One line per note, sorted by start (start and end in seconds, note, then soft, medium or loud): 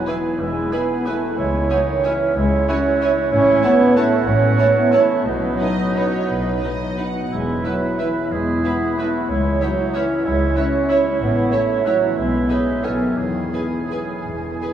0.00 0.39 E3 medium
0.00 0.47 B3 soft
0.00 0.31 E4 soft
0.00 0.23 G#4 soft
0.00 0.15 B4 soft
0.00 0.80 E5 soft
0.00 0.97 B5 soft
0.07 0.40 E3 medium
0.07 0.16 E4 soft
0.07 0.42 G#4 medium
0.07 0.15 B4 soft
0.07 0.39 B4 medium
0.07 0.16 G#5 soft
0.07 0.39 G#5 medium
0.16 0.71 B4 soft
0.25 0.63 G#4 soft
0.40 0.66 E1 medium
0.40 0.66 E2 medium
0.40 1.39 E3 medium
0.40 0.72 G#3 medium
0.40 0.73 E4 medium
0.40 0.71 B4 medium
0.40 0.72 G#5 soft
0.48 1.39 B3 soft
0.56 1.30 E4 soft
0.64 1.22 G#4 soft
0.72 1.06 B3 medium
0.72 0.80 E4 soft
0.72 1.08 G#4 medium
0.72 0.80 B4 soft
0.72 1.14 B4 soft
0.72 1.39 B4 medium
0.72 0.80 G#5 soft
0.72 1.36 G#5 medium
0.81 1.87 E5 soft
0.90 1.05 G#5 soft
0.99 1.39 B5 soft
1.06 1.38 A3 medium
1.06 1.14 E4 medium
1.06 1.37 F#4 medium
1.06 1.14 B4 soft
1.06 1.14 G#5 soft
1.15 1.39 B4 soft
1.23 1.69 G#4 soft
1.31 1.61 E4 soft
1.37 1.64 C#2 medium
1.37 2.35 C#3 medium
1.37 1.69 G#3 medium
1.37 1.71 E4 medium
1.37 2.05 C#5 medium
1.37 2.03 E5 medium
1.46 2.43 G#3 soft
1.54 2.27 C#4 soft
1.62 2.20 E4 soft
1.70 1.78 F#3 medium
1.70 2.04 D#4 medium
1.70 1.78 E4 medium
1.70 2.11 G#4 soft
1.70 1.78 C#5 soft
1.70 1.78 G#5 soft
1.79 2.75 C#5 soft
1.88 2.04 D#3 medium
1.88 2.03 E5 medium
1.96 2.92 G#5 soft
2.04 2.37 E3 medium
2.04 2.39 C#4 medium
2.04 2.13 E4 medium
2.04 2.12 C#5 soft
2.04 2.36 C#5 medium
2.04 2.84 E5 medium
2.04 2.36 E5 medium
2.04 2.12 G#5 medium
2.13 2.66 G#4 medium
2.21 2.58 E4 soft
2.28 2.51 C#4 soft
2.36 2.63 C#2 medium
2.36 3.33 C#3 medium
2.36 2.69 G#3 medium
2.36 2.68 E4 medium
2.36 2.68 C#5 medium
2.36 2.68 E5 medium
2.44 3.33 G#3 soft
2.52 3.23 C#4 medium
2.60 3.16 E4 soft
2.68 3.18 C#4 medium
2.68 2.77 E4 medium
2.68 3.31 F#4 medium
2.68 3.08 G#4 medium
2.68 3.31 C#5 medium
2.68 2.77 C#5 medium
2.68 3.31 E5 medium
2.68 2.77 G#5 medium
2.76 3.69 C#5 medium
2.85 3.00 E5 medium
2.93 3.33 G#5 medium
3.01 3.10 E4 medium
3.01 3.09 C#5 medium
3.01 3.78 E5 medium
3.01 3.09 G#5 medium
3.09 3.33 G#4 medium
3.17 3.53 E4 medium
3.24 3.45 C#4 medium
3.31 3.58 A1 medium
3.31 4.26 A2 medium
3.31 3.58 A2 medium
3.31 3.61 C#4 loud
3.31 3.95 E4 medium
3.31 3.95 C#5 medium
3.31 3.95 E5 medium
3.39 4.34 E3 medium
3.55 4.11 E4 soft
3.62 3.97 B3 loud
3.62 3.72 E4 medium
3.62 4.03 A4 medium
3.62 3.71 C#5 medium
3.62 3.71 A5 medium
3.71 4.66 C#5 medium
3.79 3.95 E5 medium
3.88 4.83 A5 medium
3.96 4.27 A3 medium
3.96 4.04 E4 medium
3.96 4.93 F#4 medium
3.96 4.26 C#5 medium
3.96 4.05 C#5 medium
3.96 4.74 E5 medium
3.96 4.27 E5 medium
3.96 4.04 A5 medium
4.04 4.57 A4 medium
4.12 4.49 E4 medium
4.20 4.41 C#4 medium
4.26 4.53 A1 medium
4.26 4.53 A2 medium
4.26 5.27 A2 medium
4.26 4.76 C#4 loud
4.26 4.91 C#5 medium
4.26 4.91 E5 medium
4.35 5.27 E3 soft
4.42 5.17 C#4 medium
4.51 5.08 E4 medium
4.58 4.67 E4 medium
4.58 5.00 A4 medium
4.58 4.66 C#5 medium
4.58 4.67 A5 medium
4.67 5.27 C#5 soft
4.75 4.92 B3 medium
4.75 4.91 E5 soft
4.84 5.27 A5 medium
4.92 5.26 A3 medium
4.92 5.25 E4 medium
4.92 5.01 E4 medium
4.92 5.00 C#5 medium
4.92 5.27 C#5 medium
4.92 5.27 E5 medium
4.92 5.00 A5 medium
5.01 5.27 A4 soft
5.10 5.27 E4 soft
5.18 5.27 C#4 soft
5.25 5.54 B1 medium
5.25 5.54 B2 medium
5.25 6.28 B2 medium
5.25 7.16 F#3 medium
5.25 7.12 D#4 medium
5.25 7.15 B4 medium
5.25 7.03 D#5 medium
5.34 6.36 F#3 soft
5.43 6.20 B3 soft
5.51 6.12 D#4 soft
5.59 5.69 D#4 soft
5.59 6.04 F#4 soft
5.59 5.67 B4 soft
5.59 5.93 D#5 medium
5.70 6.70 B4 soft
5.78 5.95 D#5 soft
5.88 6.88 F#5 soft
5.96 6.04 D#4 soft
5.96 6.04 B4 soft
5.96 6.29 C#5 medium
5.96 6.79 D#5 soft
6.05 6.62 F#4 soft
6.13 6.53 D#4 soft
6.22 6.44 B3 soft
6.29 6.57 B1 medium
6.29 6.57 B2 medium
6.29 7.33 B2 soft
6.29 6.64 B4 medium
6.38 7.33 F#3 soft
6.46 7.22 B3 soft
6.54 7.14 D#4 soft
6.63 6.72 D#4 soft
6.63 7.06 F#4 soft
6.63 6.71 B4 soft
6.63 6.99 D#5 medium
6.72 7.64 B4 soft
6.80 6.97 D#5 soft
6.89 7.33 F#5 soft
6.97 7.07 D#4 soft
6.97 7.05 B4 soft
6.97 7.32 F#5 medium
7.07 7.33 F#4 soft
7.15 7.33 D#4 soft
7.23 7.38 B3 soft
7.32 7.59 E1 medium
7.32 7.59 E2 medium
7.32 8.31 E3 soft
7.32 7.64 G#3 medium
7.32 7.66 E4 medium
7.32 7.96 B4 medium
7.32 7.95 E5 soft
7.40 7.55 B3 soft
7.48 8.15 E4 soft
7.56 8.23 B3 soft
7.64 7.99 F#3 medium
7.64 7.73 E4 soft
7.64 7.72 B4 soft
7.64 8.33 B4 medium
7.64 7.82 B4 soft
7.64 7.73 E5 soft
7.74 7.98 E5 soft
7.83 8.07 B4 soft
7.91 8.88 B5 soft
7.99 8.32 E3 medium
7.99 8.07 E4 soft
7.99 8.07 B4 soft
7.99 8.31 B4 medium
7.99 8.07 E5 soft
7.99 8.31 E5 soft
8.08 8.63 B4 soft
8.16 8.39 E4 soft
8.24 8.47 B3 soft
8.32 8.59 E1 medium
8.32 8.59 E2 medium
8.32 9.31 E3 soft
8.32 8.65 G#3 medium
8.32 9.00 G#4 medium
8.32 8.64 B4 soft
8.32 8.64 E5 soft
8.40 8.55 E4 soft
8.48 9.20 B3 soft
8.56 9.12 E4 soft
8.64 8.98 B3 medium
8.64 8.73 E4 soft
8.64 8.80 B4 soft
8.64 9.30 B4 medium
8.64 8.73 B4 soft
8.64 9.28 E5 medium
8.64 8.73 E5 soft
8.73 8.97 E5 soft
8.81 9.04 B4 soft
8.90 9.31 B5 soft
8.98 9.29 A3 medium
8.98 9.06 E4 soft
8.98 9.29 F#4 medium
8.98 9.07 B4 soft
8.98 9.76 E5 soft
8.98 9.06 E5 soft
9.06 9.30 B4 soft
9.14 9.52 E4 soft
9.21 9.30 B3 soft
9.29 9.56 C#2 medium
9.29 10.23 C#3 soft
9.29 9.61 G#3 medium
9.29 9.63 E4 medium
9.29 9.94 C#5 medium
9.29 9.93 E5 medium
9.36 10.16 G#3 soft
9.44 9.60 C#4 soft
9.53 10.00 E4 soft
9.61 9.94 F#3 medium
9.61 10.09 C#4 soft
9.61 9.96 D#4 medium
9.61 9.70 E4 soft
9.61 9.69 C#5 soft
9.61 9.69 E5 soft
9.69 9.85 C#5 soft
9.77 9.93 E5 soft
9.86 10.63 C#5 medium
9.94 10.25 E3 medium
9.94 10.24 C#4 medium
9.94 10.03 E4 medium
9.94 10.02 C#5 medium
9.94 10.24 C#5 medium
9.94 10.24 E5 medium
9.94 10.72 E5 soft
9.94 10.02 E5 medium
10.01 10.46 E4 medium
10.10 10.31 C#4 soft
10.17 10.39 G#3 soft
10.25 10.51 C#2 medium
10.25 11.21 C#3 medium
10.25 10.56 G#3 medium
10.25 10.58 E4 medium
10.25 10.56 C#5 medium
10.25 10.55 E5 medium
10.32 10.55 C#4 soft
10.40 11.11 G#3 soft
10.48 10.96 E4 soft
10.56 11.03 C#4 soft
10.56 11.04 C#4 medium
10.56 10.64 E4 medium
10.56 10.91 F#4 medium
10.56 11.19 C#5 medium
10.56 10.65 C#5 soft
10.56 11.19 E5 medium
10.56 10.64 E5 medium
10.64 10.80 C#5 soft
10.73 10.88 E5 soft
10.89 10.97 E4 medium
10.89 11.87 E4 medium
10.89 10.98 C#5 medium
10.89 11.68 E5 medium
10.89 10.98 E5 medium
10.97 11.42 E4 medium
11.05 11.35 C#4 soft
11.13 11.21 G#3 soft
11.20 11.46 A1 medium
11.20 11.46 A2 medium
11.20 12.19 A2 medium
11.20 11.51 B3 medium
11.20 11.51 C#5 medium
11.20 11.51 E5 medium
11.28 12.09 E3 soft
11.36 11.51 C#4 soft
11.44 11.93 E4 soft
11.51 11.86 A3 medium
11.51 12.01 C#4 soft
11.51 11.60 E4 medium
11.51 12.19 C#5 medium
11.51 11.60 C#5 soft
11.51 11.60 E5 medium
11.51 12.16 E5 medium
11.60 11.76 C#5 soft
11.69 11.85 E5 soft
11.77 12.19 C#5 medium
11.86 12.10 F#3 medium
11.86 11.94 E4 soft
11.86 12.17 F#4 medium
11.86 11.94 C#5 soft
11.86 12.65 E5 soft
11.86 11.94 E5 medium
11.94 12.40 E4 soft
12.02 12.19 C#4 soft
12.10 12.19 E3 soft
12.10 12.18 E3 medium
12.17 12.44 B1 medium
12.17 12.82 B2 medium
12.17 12.44 B2 medium
12.17 12.47 G#3 medium
12.17 12.51 E4 medium
12.17 12.49 B4 medium
12.17 12.49 E5 medium
12.25 13.25 G#3 soft
12.33 13.34 B3 soft
12.41 12.85 E4 soft
12.48 12.82 G#3 medium
12.48 12.85 D#4 medium
12.48 12.58 G#4 soft
12.48 13.43 G#4 soft
12.48 12.57 B4 soft
12.48 12.85 B4 medium
12.48 12.85 E5 medium
12.48 12.58 E5 soft
12.58 13.62 B4 soft
12.66 12.85 E5 soft
12.75 13.72 G#5 soft
12.83 13.12 B1 soft
12.83 13.12 B2 medium
12.83 13.19 B2 soft
12.83 13.01 E3 medium
12.83 13.19 C#4 soft
12.83 13.19 A4 soft
12.83 12.92 A4 soft
12.83 12.91 C#5 soft
12.83 13.18 G#5 soft
12.83 12.92 G#5 soft
12.92 13.19 F#3 soft
13.01 13.17 D#3 medium
13.01 13.19 A3 soft
13.09 13.19 C#4 soft
13.17 13.47 E1 soft
13.17 13.47 E2 soft
13.17 13.53 D#3 medium
13.17 14.25 E3 soft
13.17 14.73 G#4 medium
13.17 13.53 G#4 soft
13.17 13.53 G#5 soft
13.27 14.17 G#3 soft
13.35 13.53 B3 soft
13.44 13.99 G#4 soft
13.53 14.73 E3 soft
13.53 14.08 B3 soft
13.53 13.61 G#4 soft
13.53 14.73 G#4 medium
13.53 13.61 B4 soft
13.53 14.73 G#5 medium
13.53 13.62 G#5 soft
13.63 13.81 B4 soft
13.73 13.90 G#5 soft
13.82 14.71 B4 soft
13.91 13.99 G#4 soft
13.91 13.99 B4 soft
13.91 13.99 G#5 soft
13.91 14.73 G#5 soft
14.00 14.52 G#4 soft
14.09 14.34 B3 soft
14.18 14.43 G#3 soft
14.26 14.55 E1 soft
14.26 14.55 E2 soft
14.26 14.73 E3 soft
14.35 14.61 B3 soft
14.44 14.73 G#3 soft
14.53 14.73 G#4 soft
14.62 14.73 B3 soft
14.62 14.70 G#4 soft
14.62 14.70 B4 soft
14.62 14.70 G#5 soft